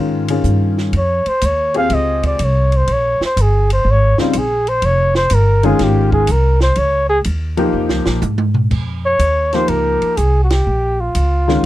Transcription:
0.00 0.43 G#2 medium
0.00 0.26 D#3 medium
0.00 0.26 G#3 medium
0.00 0.27 C#4 medium
0.00 0.27 F4 medium
0.28 0.91 D#3 medium
0.28 0.91 C#4 medium
0.28 0.91 F4 medium
0.28 0.91 G#4 soft
0.28 ride medium
0.44 0.92 G2 medium
0.44 hi-hat pedal medium
0.78 snare soft
0.93 1.24 F2 medium
0.93 ride medium
0.97 1.29 C#5 medium
1.26 1.47 C5 medium
1.26 muted upright bass stroke soft
1.26 ride soft
1.41 1.89 D#2 medium
1.41 hi-hat pedal medium
1.41 ride medium
1.46 1.77 C#5 medium
1.74 2.36 C4 medium
1.74 2.37 F4 medium
1.74 2.36 G4 medium
1.74 2.37 G#4 medium
1.74 1.96 F5 loud
1.74 ride soft
1.90 2.38 C#2 medium
1.90 ride medium
1.94 2.26 D#5 medium
2.23 2.46 D5 medium
2.23 kick soft
2.23 ride soft
2.39 2.87 C2 medium
2.39 hi-hat pedal soft
2.39 ride medium
2.44 2.78 C#5 medium
2.72 ride soft
2.77 2.94 C5 medium
2.87 3.19 A#1 medium
2.87 ride medium
2.93 3.24 C#5 medium
3.20 muted upright bass stroke soft
3.20 snare soft
3.25 3.43 C5 medium
3.37 3.84 G1 medium
3.37 hi-hat pedal medium
3.37 ride medium
3.42 3.72 G#4 medium
3.70 3.92 C5 medium
3.70 ride medium
3.85 4.16 G#1 medium
3.91 4.20 C#5 loud
4.18 4.33 C#3 medium
4.18 4.33 G3 medium
4.18 4.33 C4 medium
4.18 4.33 D#4 medium
4.18 4.40 F4 medium
4.18 muted upright bass stroke soft
4.18 snare medium
4.33 4.81 A#1 medium
4.33 hi-hat pedal soft
4.33 ride medium
4.38 4.70 G#4 medium
4.67 4.87 C5 medium
4.67 ride soft
4.82 5.30 F1 medium
4.82 5.16 C#5 medium
4.82 ride medium
5.15 5.36 C5 medium
5.15 snare medium
5.30 5.79 G1 medium
5.30 hi-hat pedal medium
5.30 ride medium
5.34 5.67 A#4 medium
5.63 6.25 D#3 medium
5.63 6.26 G#3 medium
5.63 6.26 C#4 medium
5.63 6.26 F4 medium
5.63 5.85 G#4 medium
5.63 ride soft
5.79 6.27 G#1 medium
5.79 snare soft
5.79 ride medium
5.83 6.13 G4 medium
6.12 6.33 G#4 medium
6.12 kick medium
6.27 6.76 C2 medium
6.27 hi-hat pedal medium
6.27 ride medium
6.31 6.62 A#4 medium
6.60 6.80 C5 medium
6.60 snare soft
6.75 7.24 C#2 medium
6.75 7.09 C#5 medium
6.75 ride medium
7.09 7.19 G#4 loud
7.24 7.72 D#2 medium
7.24 hi-hat pedal soft
7.24 ride medium
7.57 8.19 F3 medium
7.57 8.19 A#3 medium
7.57 8.20 D#4 medium
7.57 8.20 G4 medium
7.57 ride soft
7.73 7.90 F2 medium
7.89 8.06 C#2 medium
7.89 snare medium
8.06 8.21 A#1 medium
8.06 snare medium
8.22 8.70 G#2 medium
8.22 hi-hat pedal medium
8.22 high tom medium
8.38 high tom medium
8.54 floor tom medium
8.70 9.19 F2 medium
8.70 kick medium
8.70 crash medium
9.06 9.56 C#5 loud
9.19 9.67 D#2 medium
9.19 hi-hat pedal medium
9.19 ride medium
9.53 10.15 F3 medium
9.53 10.15 A#3 medium
9.53 10.16 D#4 medium
9.53 10.16 G4 medium
9.53 9.71 C5 medium
9.53 snare soft
9.53 ride soft
9.68 10.00 C#2 medium
9.68 10.19 A#4 medium
9.68 ride medium
10.02 muted upright bass stroke soft
10.02 ride soft
10.17 10.65 C2 medium
10.17 10.41 G#4 medium
10.17 hi-hat pedal medium
10.17 ride medium
10.44 10.52 F#4 medium
10.50 11.02 G4 medium
10.50 snare medium
10.50 ride medium
10.67 11.14 A#1 medium
11.01 11.66 F4 medium
11.15 11.62 C#2 medium
11.15 hi-hat pedal medium
11.15 ride medium
11.48 11.66 D#3 medium
11.48 11.66 G#3 medium
11.48 11.66 C#4 medium
11.48 11.66 F4 medium
11.48 snare soft

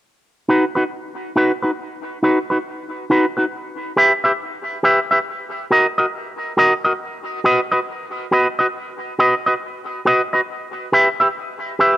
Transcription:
0.49 0.64 D#4 medium
0.49 0.64 F#4 medium
0.49 0.64 B4 medium
0.75 0.84 D#4 medium
0.75 0.83 F#4 medium
0.75 0.83 B4 medium
1.36 1.51 D#4 medium
1.36 1.51 F#4 medium
1.36 1.51 B4 medium
1.62 1.71 D#4 medium
1.62 1.70 F#4 medium
1.62 1.70 B4 medium
2.23 2.38 D#4 medium
2.23 2.38 F#4 medium
2.23 2.38 B4 medium
2.50 2.58 D#4 medium
2.50 2.58 F#4 medium
2.50 2.57 B4 medium
3.10 3.25 D#4 medium
3.10 3.25 F#4 medium
3.10 3.25 B4 loud
3.37 3.45 D#4 soft
3.37 3.44 F#4 medium
3.37 3.44 B4 medium
3.97 4.11 G4 medium
3.97 4.12 B4 medium
3.97 4.12 E5 medium
4.24 4.32 G4 medium
4.24 4.31 B4 medium
4.24 4.31 E5 medium
4.83 4.98 G4 medium
4.83 4.99 B4 medium
4.83 4.99 E5 medium
5.11 5.19 G4 soft
5.11 5.18 B4 medium
5.11 5.18 E5 medium
5.71 5.86 F#4 medium
5.71 5.86 A#4 medium
5.71 5.86 D#5 medium
5.98 6.06 F#4 medium
5.98 6.05 A#4 medium
5.98 6.05 D#5 medium
6.57 6.72 F#4 medium
6.57 6.73 A#4 medium
6.57 6.73 D#5 loud
6.85 6.92 F#4 medium
6.85 6.92 A#4 medium
6.85 6.92 D#5 medium
7.44 7.59 F#4 medium
7.44 7.60 B4 medium
7.44 7.60 D#5 loud
7.72 7.80 F#4 medium
7.72 7.79 B4 medium
7.72 7.79 D#5 medium
8.31 8.46 F#4 medium
8.31 8.47 B4 medium
8.31 8.47 D#5 medium
8.59 8.67 F#4 medium
8.59 8.66 B4 medium
8.59 8.66 D#5 medium
9.19 9.34 F#4 medium
9.19 9.34 B4 medium
9.19 9.34 D#5 medium
9.46 9.54 F#4 soft
9.46 9.54 B4 medium
9.46 9.53 D#5 medium
10.05 10.20 F#4 medium
10.05 10.21 B4 medium
10.05 10.21 D#5 loud
10.33 10.41 F#4 medium
10.33 10.40 B4 medium
10.33 10.40 D#5 medium
10.92 11.07 G4 medium
10.92 11.08 B4 medium
10.92 11.08 E5 medium
11.20 11.28 G4 medium
11.20 11.27 B4 medium
11.20 11.27 E5 medium
11.79 11.94 G4 medium
11.79 11.95 B4 medium
11.79 11.95 E5 medium

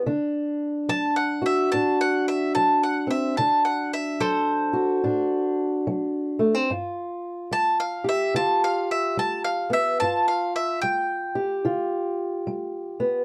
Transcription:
0.06 0.83 D3 medium
0.06 1.74 D4 medium
0.89 1.65 F#3 medium
0.89 1.16 A5 medium
1.16 1.43 F#5 medium
1.42 4.72 F#4 medium
1.46 1.71 E5 medium
1.72 2.49 A2 medium
1.72 3.39 D4 medium
1.72 1.98 A5 medium
2.01 2.27 F#5 medium
2.28 2.54 E5 medium
2.55 3.32 F#3 medium
2.55 2.81 A5 medium
2.83 3.10 F#5 medium
3.07 3.34 C4 medium
3.07 3.37 E5 medium
3.37 4.15 D3 medium
3.37 5.04 D4 medium
3.37 3.64 A5 medium
3.65 3.92 F#5 medium
3.93 4.20 E5 medium
4.20 4.97 F#3 medium
4.20 6.65 A4 medium
4.20 6.65 C5 medium
4.73 6.70 F#4 medium
5.04 5.80 A2 medium
5.04 6.70 D4 medium
5.87 6.63 F#3 medium
6.39 6.54 A3 medium
6.54 6.70 C4 soft
6.70 7.46 G2 medium
6.70 8.35 F4 medium
7.51 8.28 G3 medium
7.51 7.79 A5 medium
7.80 8.06 F5 medium
8.04 10.05 G4 medium
8.09 8.35 E5 medium
8.34 9.11 D3 medium
8.34 10.02 F4 medium
8.34 8.62 A5 medium
8.64 8.90 F5 medium
8.91 9.17 E5 medium
9.17 9.94 G3 medium
9.17 9.44 A5 medium
9.44 9.71 F5 medium
9.70 9.97 B3 medium
9.70 10.00 E5 medium
10.00 10.77 G2 medium
10.00 11.65 F4 medium
10.00 10.27 A5 loud
10.28 10.55 F5 medium
10.56 10.81 E5 medium
10.82 11.59 G3 medium
10.82 13.24 G5 medium
11.35 13.24 G4 medium
11.65 12.41 D3 medium
11.65 13.24 F4 medium
12.47 13.24 G3 medium
13.00 13.24 B3 medium

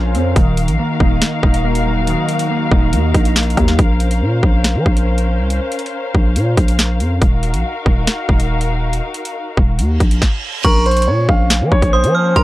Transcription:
0.00 0.16 A#1 loud
0.00 0.33 C#3 medium
0.00 0.36 C#4 medium
0.00 0.36 F4 medium
0.00 7.18 A#4 medium
0.00 0.33 C5 medium
0.00 7.18 F5 medium
0.14 0.35 F2 loud
0.14 0.36 C4 medium
0.14 closed hi-hat medium
0.36 0.70 D#1 loud
0.36 1.43 D#3 loud
0.36 3.75 D#4 medium
0.36 3.75 F#4 medium
0.36 kick loud
0.36 closed hi-hat medium
0.57 closed hi-hat medium
0.68 0.78 A#1 loud
0.68 closed hi-hat medium
0.79 1.63 A#3 medium
1.00 1.21 D#1 loud
1.00 1.42 D#4 medium
1.00 kick loud
1.22 snare loud
1.22 closed hi-hat medium
1.43 2.15 D#1 loud
1.43 2.50 D#4 medium
1.43 kick loud
1.54 closed hi-hat medium
1.65 2.49 A#3 medium
1.75 closed hi-hat medium
1.86 2.93 F#3 medium
2.07 3.15 D#3 medium
2.07 closed hi-hat medium
2.29 closed hi-hat medium
2.39 closed hi-hat medium
2.50 3.35 A#3 medium
2.71 2.95 D#1 loud
2.71 3.13 D#4 medium
2.71 kick loud
2.93 3.13 D#2 loud
2.93 closed hi-hat medium
3.14 3.56 A#1 loud
3.14 3.79 D#4 medium
3.14 kick loud
3.14 closed hi-hat medium
3.25 closed hi-hat medium
3.36 3.79 A#3 medium
3.36 snare loud
3.36 closed hi-hat soft
3.43 closed hi-hat medium
3.50 closed hi-hat medium
3.57 3.78 D#2 loud
3.57 3.79 F#3 medium
3.57 kick loud
3.57 cross-stick medium
3.57 closed hi-hat medium
3.68 snare medium
3.79 4.23 A#1 loud
3.79 7.18 C#4 medium
3.79 7.18 C5 medium
3.79 kick loud
3.79 closed hi-hat medium
4.00 closed hi-hat medium
4.11 closed hi-hat medium
4.22 4.42 A#2 loud
4.43 4.77 A#1 loud
4.43 kick loud
4.64 snare loud
4.64 closed hi-hat medium
4.75 4.85 F3 loud
4.86 5.41 A#1 loud
4.86 kick loud
4.97 closed hi-hat medium
5.18 closed hi-hat medium
5.40 5.60 C2 loud
5.50 closed hi-hat medium
5.72 closed hi-hat medium
5.79 closed hi-hat medium
5.86 closed hi-hat medium
6.15 6.37 A#1 loud
6.15 kick loud
6.36 6.56 A#2 loud
6.36 closed hi-hat medium
6.57 7.02 A#1 loud
6.57 kick loud
6.57 closed hi-hat medium
6.68 closed hi-hat medium
6.79 snare loud
6.79 closed hi-hat medium
7.00 7.21 F2 loud
7.00 closed hi-hat medium
7.22 7.55 D#1 loud
7.22 10.19 D#4 medium
7.22 10.19 F#4 medium
7.22 10.19 A#4 medium
7.22 10.19 F5 medium
7.22 kick loud
7.22 closed hi-hat medium
7.43 closed hi-hat medium
7.54 7.64 A#1 loud
7.54 closed hi-hat medium
7.86 8.07 D#1 loud
7.86 kick loud
8.07 snare loud
8.07 closed hi-hat medium
8.29 9.01 D#1 loud
8.29 kick loud
8.40 closed hi-hat medium
8.61 closed hi-hat medium
8.93 closed hi-hat medium
9.14 closed hi-hat medium
9.25 closed hi-hat medium
9.57 9.80 D#1 loud
9.57 kick loud
9.79 9.99 D#2 loud
9.79 closed hi-hat medium
9.79 reverse cymbal medium
10.00 10.21 A#1 loud
10.00 kick loud
10.00 closed hi-hat medium
10.11 closed hi-hat medium
10.22 kick loud
10.22 snare medium
10.64 11.09 A#1 loud
10.64 12.44 A#3 medium
10.64 12.44 C4 medium
10.64 12.44 C#4 medium
10.64 10.83 A#4 loud
10.64 11.05 C#6 loud
10.64 kick loud
10.64 closed hi-hat medium
10.64 crash loud
10.86 11.04 C5 medium
10.86 closed hi-hat soft
10.91 closed hi-hat medium
10.97 closed hi-hat medium
11.02 closed hi-hat medium
11.07 11.28 A#2 loud
11.07 11.26 C#5 medium
11.29 11.62 A#1 loud
11.29 11.69 F5 medium
11.29 kick loud
11.50 snare loud
11.50 closed hi-hat medium
11.61 11.71 F3 loud
11.72 11.82 A#1 loud
11.72 11.90 C#5 medium
11.72 kick loud
11.82 12.05 A#1 loud
11.82 kick medium
11.82 closed hi-hat medium
11.93 12.33 C5 medium
11.93 12.13 D#6 medium
12.04 12.34 F3 loud
12.04 closed hi-hat medium
12.15 12.35 F6 medium
12.36 12.44 A#1 loud
12.36 12.44 A#4 loud
12.36 12.44 C6 loud
12.36 kick loud
12.36 closed hi-hat medium

